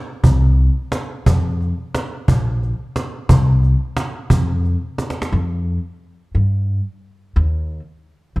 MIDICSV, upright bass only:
0, 0, Header, 1, 2, 480
1, 0, Start_track
1, 0, Tempo, 338219
1, 341, Time_signature, 3, 2, 24, 8
1, 11921, End_track
2, 0, Start_track
2, 0, Title_t, "Upright bass"
2, 0, Program_c, 0, 32
2, 332, Note_on_c, 0, 36, 80
2, 960, Note_off_c, 0, 36, 0
2, 1793, Note_on_c, 0, 41, 83
2, 2420, Note_off_c, 0, 41, 0
2, 3239, Note_on_c, 0, 34, 88
2, 3863, Note_off_c, 0, 34, 0
2, 4670, Note_on_c, 0, 36, 80
2, 5290, Note_off_c, 0, 36, 0
2, 6107, Note_on_c, 0, 41, 81
2, 6734, Note_off_c, 0, 41, 0
2, 7556, Note_on_c, 0, 41, 84
2, 8185, Note_off_c, 0, 41, 0
2, 9007, Note_on_c, 0, 43, 73
2, 9630, Note_off_c, 0, 43, 0
2, 10445, Note_on_c, 0, 39, 87
2, 11056, Note_off_c, 0, 39, 0
2, 11863, Note_on_c, 0, 36, 78
2, 11921, Note_off_c, 0, 36, 0
2, 11921, End_track
0, 0, End_of_file